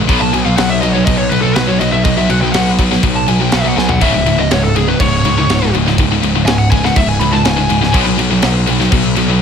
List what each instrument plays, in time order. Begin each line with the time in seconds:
0.08 picked electric bass B1, distorted electric guitar B2 F#3 B3, kick, crash
0.21 distorted electric guitar B2 F#3, lead electric guitar A5
0.33 picked electric bass B1, distorted electric guitar B2 F#3, lead electric guitar G#5, crash
0.45 distorted electric guitar B2 F#3, lead electric guitar F5
0.56 picked electric bass B1, distorted electric guitar B2 F#3, lead electric guitar F#5, snare, crash
0.70 lead electric guitar E5
0.81 distorted electric guitar B2 F#3, lead electric guitar D#5, crash
0.93 distorted electric guitar B2 F#3, lead electric guitar C#5
1.05 picked electric bass B1, distorted electric guitar B2 F#3, lead electric guitar D#5, kick, crash
1.18 lead electric guitar C#5
1.29 picked electric bass B1, distorted electric guitar B2 F#3, lead electric guitar B4, crash
1.42 distorted electric guitar B2 F#3, lead electric guitar A4
1.55 picked electric bass B1, distorted electric guitar B2 F#3, lead electric guitar B4, snare, crash
1.67 distorted electric guitar B2 F#3, lead electric guitar C#5
1.80 picked electric bass B1, distorted electric guitar B2 F#3, lead electric guitar D#5, crash
1.92 distorted electric guitar B2 F#3, lead electric guitar E5
2.04 picked electric bass B1, distorted electric guitar B2 F#3, lead electric guitar D#5, kick, crash
2.17 distorted electric guitar B2 F#3, lead electric guitar E5
2.29 picked electric bass B1, distorted electric guitar B2 F#3, lead electric guitar F#5, crash
2.41 distorted electric guitar B2 F#3, lead electric guitar G5
2.52 picked electric bass B1, distorted electric guitar B2 F#3, lead electric guitar F#5, snare, crash
2.79 distorted electric guitar B2 F#3, kick, crash
2.91 distorted electric guitar B2 F#3, snare
3.03 picked electric bass B1, distorted electric guitar B2 F#3, kick, crash
3.16 lead electric guitar A5
3.28 picked electric bass B1, distorted electric guitar B2 F#3, lead electric guitar G#5, crash
3.40 distorted electric guitar B2 F#3, lead electric guitar G5
3.52 picked electric bass B1, distorted electric guitar B2 F#3, lead electric guitar F#5, snare, crash
3.61 distorted electric guitar B2 F#3, lead electric guitar E5
3.69 lead electric guitar F#5
3.76 picked electric bass B1, distorted electric guitar B2 F#3, lead electric guitar G#5, snare
3.89 distorted electric guitar B2 F#3, lead electric guitar F#5, floor tom
4.01 picked electric bass C#1, distorted electric guitar C#2 G#2 C#3, lead electric guitar E5, kick, crash
4.14 distorted electric guitar C#2 G#2
4.26 picked electric bass C#1, distorted electric guitar C#2 G#2, crash
4.38 distorted electric guitar C#2 G#2, lead electric guitar D#5
4.51 picked electric bass C#1, distorted electric guitar C#2 G#2, lead electric guitar C#5, snare, crash
4.63 lead electric guitar A4
4.75 distorted electric guitar C#2 G#2, lead electric guitar G#4, crash
4.88 distorted electric guitar C#2 G#2, lead electric guitar B4
5.00 picked electric bass C#1, distorted electric guitar C#2 G#2, lead electric guitar C#5, kick, crash
5.24 picked electric bass C#2, distorted electric guitar C#2 G#2, crash
5.38 distorted electric guitar C#2 G#2
5.48 picked electric bass C#1, distorted electric guitar C#2 G#2, snare, crash
5.62 distorted electric guitar C#2 G#2
5.74 picked electric bass C#1, distorted electric guitar C#2 G#2, crash
5.87 distorted electric guitar C#2 G#2, snare
5.98 picked electric bass C#1, distorted electric guitar C#2 G#2, kick, crash
6.12 distorted electric guitar C#2 G#2
6.22 picked electric bass C#1, distorted electric guitar C#2 G#2, crash
6.35 distorted electric guitar C#2 G#2
6.46 picked electric bass C#1, distorted electric guitar C#2 G#2, lead electric guitar G#5, snare, crash
6.59 lead electric guitar F#5
6.71 distorted electric guitar C#2 G#2, lead electric guitar G#5, kick, crash
6.84 distorted electric guitar C#2 G#2, lead electric guitar F#5, snare
6.96 picked electric bass C#1, distorted electric guitar C#2 G#2, lead electric guitar E5, kick, crash
7.08 lead electric guitar G#5
7.20 picked electric bass C#2, distorted electric guitar C#2 G#2, lead electric guitar B5, crash
7.31 distorted electric guitar C#2 G#2, lead electric guitar A5
7.44 picked electric bass C#1, distorted electric guitar C#2 G#2, lead electric guitar G#5, snare, crash
7.57 distorted electric guitar C#2 G#2
7.69 picked electric bass C#1, distorted electric guitar C#2 G#2, crash
7.81 distorted electric guitar C#2 G#2, snare
7.93 picked electric bass B1, distorted electric guitar B2 F#3 B3, kick, crash
8.06 distorted electric guitar B2 F#3
8.18 picked electric bass B1, distorted electric guitar B2 F#3, crash
8.31 distorted electric guitar B2 F#3
8.42 picked electric bass B1, distorted electric guitar B2 F#3, snare, crash
8.67 distorted electric guitar B2 F#3, crash
8.80 distorted electric guitar B2 F#3, snare
8.92 picked electric bass B1, distorted electric guitar B2 F#3, kick, crash
9.16 picked electric bass B1, distorted electric guitar B2 F#3, crash
9.30 distorted electric guitar B2 F#3